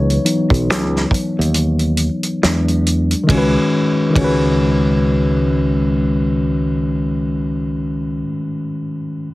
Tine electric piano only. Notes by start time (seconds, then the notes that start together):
Already playing: E3 F#3 B3 D#4 B4 C#5
0.24 E3 F#3 B3 D#4
2.42 F#3 G#3 D4
3.23 D#3 G#3
3.31 C#4 F#4
3.38 B4
4.10 D#3 G#3
4.17 C#4 F#4
4.24 B4